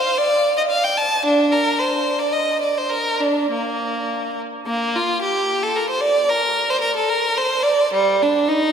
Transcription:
0.00 0.17 C5 medium
0.18 0.56 D5 medium
0.57 0.62 D#5 medium
0.70 0.82 F5 medium
0.84 0.96 G5 medium
0.97 1.24 A5 medium
1.25 1.52 D4 medium
1.52 1.78 A#4 medium
1.79 2.19 C5 medium
2.19 2.33 D5 medium
2.32 2.61 D#5 medium
2.61 2.76 D5 medium
2.78 2.92 C5 medium
2.90 3.21 A#4 medium
3.20 3.51 D4 medium
3.51 4.38 A#3 medium
4.66 4.94 A#3 medium
4.96 5.22 F4 medium
5.22 5.61 G4 medium
5.63 5.76 A4 medium
5.76 5.90 A#4 medium
5.90 6.03 C5 medium
6.01 6.29 D5 medium
6.29 6.69 A#4 medium
6.70 6.83 C5 medium
6.81 6.95 A#4 medium
6.96 7.10 A4 medium
7.10 7.37 A#4 medium
7.37 7.65 C5 medium
7.63 7.92 D5 medium
7.93 8.21 G3 medium
8.23 8.49 D4 medium
8.48 8.72 D#4 medium

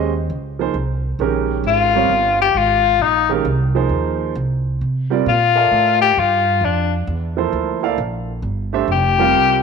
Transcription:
0.00 0.28 D#2 medium
0.00 0.11 G#3 medium
0.00 0.11 C#4 medium
0.00 0.11 G4 medium
0.00 0.12 C5 medium
0.00 0.12 D#5 medium
0.30 0.73 C#2 medium
0.59 0.73 F3 medium
0.59 0.74 A#3 medium
0.59 0.74 D#4 medium
0.59 0.74 G#4 medium
0.59 0.74 C5 medium
0.74 1.18 C2 medium
1.19 1.63 A#1 medium
1.19 1.89 D#3 medium
1.19 1.89 G#3 medium
1.19 1.89 C#4 medium
1.19 1.89 G4 medium
1.19 1.90 A#4 medium
1.64 2.08 G#1 medium
1.64 2.37 F4 medium
1.95 2.09 G3 medium
1.95 2.09 C4 medium
1.95 2.09 F4 medium
1.95 2.09 A#4 medium
1.95 2.09 C#5 medium
2.09 2.54 G1 medium
2.41 2.59 G4 medium
2.54 2.99 G#1 medium
2.54 3.03 F4 medium
2.99 3.44 A#1 medium
2.99 3.31 D#4 medium
3.29 3.44 D#3 medium
3.29 3.44 G#3 medium
3.29 3.44 C#4 medium
3.29 3.44 G4 medium
3.29 3.44 A#4 medium
3.45 3.89 C2 medium
3.75 4.33 F3 medium
3.75 4.33 A#3 medium
3.75 4.33 D#4 medium
3.75 4.33 G#4 medium
3.75 4.33 C5 medium
3.89 4.34 D#2 medium
4.35 4.80 C2 medium
4.81 5.25 C3 medium
5.10 5.25 G3 medium
5.10 5.25 C4 medium
5.10 5.25 F4 medium
5.10 5.25 A#4 medium
5.10 5.25 D5 medium
5.26 5.70 A#2 medium
5.26 5.99 F4 medium
5.56 6.14 A4 medium
5.56 6.13 A#4 medium
5.56 6.14 D5 medium
5.56 6.14 E5 medium
5.56 6.14 F5 medium
5.71 6.15 A2 medium
6.01 6.21 G4 loud
6.17 6.60 G2 medium
6.17 6.66 F4 medium
6.61 7.05 F2 medium
6.61 6.93 D4 medium
7.07 7.51 E2 medium
7.37 7.79 F3 medium
7.37 7.79 A#3 medium
7.37 7.79 E4 medium
7.37 7.80 A4 medium
7.37 7.80 C5 medium
7.53 7.97 D2 medium
7.83 7.96 A#3 medium
7.83 7.97 E4 medium
7.83 7.97 A4 medium
7.83 7.97 D5 medium
7.83 7.97 F5 medium
7.98 8.42 A#1 medium
8.42 8.87 G1 medium
8.73 8.87 A3 medium
8.73 8.87 D4 medium
8.73 8.87 G4 medium
8.73 8.87 C5 medium
8.73 8.87 E5 medium
8.88 9.32 F1 medium
8.92 9.63 G4 medium
9.18 9.63 G3 medium
9.18 9.63 C4 medium
9.18 9.63 F4 medium
9.18 9.63 A#4 medium
9.18 9.63 F5 medium
9.33 9.63 C2 medium

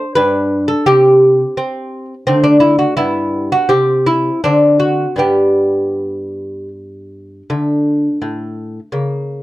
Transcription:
0.00 0.13 D4 medium
0.00 0.15 C5 loud
0.15 0.73 G2 medium
0.15 0.83 D4 medium
0.15 0.66 B4 loud
0.68 0.86 A4 medium
0.86 1.43 C3 medium
0.86 1.56 C4 soft
0.86 2.05 G4 loud
1.57 2.13 C4 medium
2.27 2.84 D3 medium
2.27 2.94 A3 medium
2.27 2.45 C4 medium
2.44 2.60 D4 medium
2.60 2.78 E4 medium
2.79 2.96 F#4 medium
2.97 3.55 G2 medium
2.97 3.66 B3 soft
2.97 3.49 E4 medium
3.52 3.70 F#4 medium
3.69 4.29 C3 medium
3.69 4.39 C4 soft
3.69 4.04 G4 medium
4.06 4.42 E4 medium
4.44 5.05 D3 medium
4.44 5.16 C4 soft
4.44 4.79 D4 medium
4.80 5.17 F#4 medium
5.16 7.41 G2 medium
5.16 7.42 G3 soft
5.16 7.42 B3 soft
5.16 6.68 G4 medium
7.50 8.07 D3 medium
7.50 8.90 A3 soft
8.22 8.79 A2 medium
8.92 9.43 C#3 medium
8.92 9.43 A#3 soft

